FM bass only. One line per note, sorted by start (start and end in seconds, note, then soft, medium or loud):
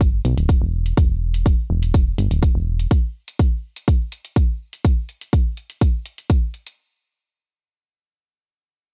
0.00 0.21 G1 medium
0.25 0.35 B1 loud
0.38 0.56 D1 medium
0.62 0.93 E1 medium
0.97 1.54 E1 medium
1.70 2.14 E1 medium
2.18 2.28 G1 loud
2.31 2.50 D1 medium
2.55 2.87 E1 medium